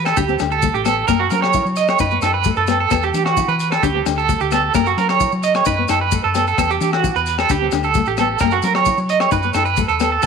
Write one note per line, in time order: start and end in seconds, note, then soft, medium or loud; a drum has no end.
0.00 0.11 E3 medium
0.05 0.17 A4 medium
0.05 cross-stick medium
0.05 low agogo medium
0.05 maracas soft
0.17 0.36 D2 medium
0.17 0.25 D4 medium
0.17 0.39 G4 medium
0.17 kick medium
0.17 maracas medium
0.28 0.36 C4 medium
0.28 maracas soft
0.39 0.69 D2 medium
0.39 0.56 D4 medium
0.39 cross-stick medium
0.39 closed hi-hat soft
0.39 low agogo medium
0.39 maracas medium
0.51 0.73 A4 medium
0.51 maracas soft
0.62 0.79 A3 medium
0.62 kick medium
0.62 maracas medium
0.74 1.02 A1 medium
0.74 0.85 G4 medium
0.74 maracas soft
0.85 1.01 B3 medium
0.85 1.07 A4 medium
0.85 cross-stick medium
0.85 closed hi-hat soft
0.85 low agogo medium
0.85 maracas medium
1.08 1.28 F#2 medium
1.08 1.24 A#3 medium
1.08 1.19 A#4 medium
1.08 kick medium
1.08 cross-stick medium
1.08 low agogo medium
1.08 maracas medium
1.19 1.30 F#4 medium
1.30 1.60 F#3 medium
1.30 1.47 C#4 medium
1.30 1.42 A#4 medium
1.30 closed hi-hat soft
1.30 maracas medium
1.42 1.64 C#5 medium
1.42 cross-stick medium
1.42 low agogo medium
1.53 1.70 E4 medium
1.53 kick medium
1.53 maracas medium
1.65 1.94 F#3 medium
1.65 maracas soft
1.76 1.88 D#5 medium
1.76 closed hi-hat soft
1.76 maracas medium
1.88 2.00 C#5 medium
1.88 cross-stick medium
1.88 low agogo medium
1.88 maracas soft
1.99 2.19 F#2 medium
1.99 2.08 D#4 medium
1.99 2.22 B4 medium
1.99 kick medium
1.99 maracas medium
2.11 2.19 B3 medium
2.11 maracas soft
2.22 2.51 F#2 medium
2.22 2.39 D#4 medium
2.22 2.34 A4 medium
2.22 cross-stick medium
2.22 closed hi-hat soft
2.22 low agogo medium
2.22 maracas medium
2.34 2.56 B4 medium
2.44 2.62 A3 medium
2.44 kick medium
2.44 maracas medium
2.56 2.85 F#2 medium
2.56 2.79 A4 medium
2.56 maracas soft
2.67 2.84 B3 medium
2.67 cross-stick medium
2.67 closed hi-hat soft
2.67 low agogo medium
2.67 maracas medium
2.80 2.91 A4 medium
2.91 3.10 E2 medium
2.91 3.07 B3 medium
2.91 3.03 A4 medium
2.91 kick medium
2.91 cross-stick medium
2.91 low agogo medium
2.91 maracas medium
3.03 3.25 G4 medium
3.03 maracas soft
3.14 3.42 E3 medium
3.14 3.30 D4 medium
3.14 closed hi-hat soft
3.14 maracas medium
3.25 3.47 F#4 medium
3.25 cross-stick medium
3.25 low agogo medium
3.37 3.53 E4 medium
3.37 kick medium
3.37 maracas medium
3.48 3.76 E3 medium
3.48 3.70 B4 medium
3.48 maracas soft
3.60 closed hi-hat soft
3.60 maracas medium
3.72 3.82 A4 medium
3.72 cross-stick medium
3.72 low agogo medium
3.72 maracas soft
3.83 4.02 D2 medium
3.83 3.91 D4 medium
3.83 4.05 G4 medium
3.83 kick medium
3.83 maracas medium
3.95 4.02 C4 medium
4.06 4.34 D2 medium
4.06 4.22 D4 medium
4.06 cross-stick medium
4.06 closed hi-hat soft
4.06 low agogo medium
4.06 maracas medium
4.18 4.39 A4 medium
4.18 maracas soft
4.29 4.45 A3 medium
4.29 kick medium
4.29 maracas medium
4.40 4.69 D2 medium
4.40 4.51 G4 medium
4.40 maracas soft
4.51 4.67 B3 medium
4.51 4.73 A4 medium
4.51 cross-stick medium
4.51 closed hi-hat soft
4.51 low agogo medium
4.51 maracas medium
4.74 4.94 F#2 medium
4.74 4.90 A#3 medium
4.74 4.86 A#4 medium
4.74 kick medium
4.74 cross-stick medium
4.74 low agogo medium
4.74 maracas medium
4.86 4.97 F#4 medium
4.86 maracas soft
4.97 5.26 F#3 medium
4.97 5.13 C#4 medium
4.97 5.09 A#4 medium
4.97 closed hi-hat soft
5.09 5.31 C#5 medium
5.09 cross-stick medium
5.09 low agogo medium
5.09 maracas soft
5.20 5.36 E4 medium
5.20 kick medium
5.20 maracas medium
5.32 5.60 F#3 medium
5.32 maracas soft
5.43 5.54 D#5 medium
5.43 closed hi-hat soft
5.43 maracas medium
5.54 5.66 C#5 medium
5.54 cross-stick medium
5.54 low agogo medium
5.54 maracas soft
5.65 5.85 F#2 loud
5.65 5.74 D#4 medium
5.65 5.88 B4 medium
5.65 kick medium
5.65 maracas loud
5.79 5.86 B3 medium
5.88 6.18 F#2 medium
5.88 6.05 D#4 medium
5.88 6.00 A4 medium
5.88 cross-stick medium
5.88 closed hi-hat soft
5.88 low agogo medium
5.88 maracas medium
6.01 6.23 B4 medium
6.12 6.28 A3 medium
6.12 kick medium
6.12 maracas loud
6.24 6.52 F#2 medium
6.24 6.45 A4 medium
6.34 6.51 B3 medium
6.34 cross-stick medium
6.34 closed hi-hat soft
6.34 low agogo medium
6.34 maracas medium
6.47 6.58 A4 medium
6.47 maracas soft
6.58 6.77 E2 medium
6.58 6.74 B3 medium
6.58 6.69 A4 medium
6.58 kick medium
6.58 cross-stick medium
6.58 low agogo medium
6.58 maracas loud
6.70 6.92 G4 medium
6.70 maracas soft
6.81 7.09 E3 medium
6.81 6.96 D4 medium
6.81 closed hi-hat soft
6.81 maracas medium
6.93 7.14 F#4 medium
6.93 cross-stick medium
6.93 low agogo medium
7.03 7.19 E4 medium
7.03 kick medium
7.03 maracas medium
7.15 7.43 E2 medium
7.15 7.37 B4 medium
7.15 maracas soft
7.26 closed hi-hat soft
7.26 maracas medium
7.38 7.49 A4 medium
7.38 cross-stick medium
7.38 low agogo medium
7.38 maracas soft
7.49 7.68 D2 medium
7.49 7.57 D4 medium
7.49 7.72 G4 medium
7.49 kick medium
7.49 maracas medium
7.62 7.69 C4 medium
7.71 8.01 D2 medium
7.71 7.88 D4 medium
7.71 cross-stick medium
7.71 closed hi-hat soft
7.71 low agogo medium
7.71 maracas medium
7.83 8.06 A4 medium
7.83 maracas soft
7.94 8.12 A3 medium
7.94 kick medium
7.94 maracas medium
8.06 8.35 A1 medium
8.06 8.18 G4 medium
8.06 maracas soft
8.17 8.35 B3 medium
8.17 8.40 A4 medium
8.17 cross-stick medium
8.17 closed hi-hat soft
8.17 low agogo medium
8.17 maracas medium
8.39 8.60 F#2 medium
8.39 8.58 A#3 medium
8.39 8.52 A#4 medium
8.39 kick medium
8.39 cross-stick medium
8.39 low agogo medium
8.39 maracas medium
8.51 8.63 F#4 medium
8.51 maracas soft
8.62 8.92 F#3 medium
8.62 8.80 C#4 medium
8.62 8.75 A#4 medium
8.62 closed hi-hat soft
8.62 maracas medium
8.75 8.97 C#5 medium
8.75 cross-stick medium
8.75 low agogo medium
8.85 9.02 E4 medium
8.85 kick medium
8.85 maracas medium
8.98 9.26 F#3 medium
8.98 maracas soft
9.09 9.20 D#5 medium
9.09 closed hi-hat medium
9.20 9.31 C#5 medium
9.20 cross-stick medium
9.20 low agogo medium
9.20 maracas soft
9.31 9.51 F#2 medium
9.31 9.40 D#4 medium
9.31 9.54 B4 medium
9.31 kick medium
9.31 maracas medium
9.42 9.52 B3 medium
9.42 maracas soft
9.54 9.83 F#2 medium
9.54 9.71 D#4 medium
9.54 9.65 A4 medium
9.54 cross-stick medium
9.54 closed hi-hat soft
9.54 low agogo medium
9.54 maracas medium
9.65 9.88 B4 medium
9.65 maracas soft
9.77 9.94 A3 medium
9.77 kick medium
9.77 maracas medium
9.88 10.17 D#2 medium
9.88 10.10 A4 medium
9.88 maracas soft
10.00 10.16 B3 medium
10.00 cross-stick medium
10.00 closed hi-hat soft
10.00 low agogo medium
10.00 maracas medium
10.12 10.22 A4 medium
10.22 10.26 E2 medium
10.22 10.26 A4 medium
10.22 muted nylon-string guitar stroke medium
10.22 low agogo medium
10.22 maracas medium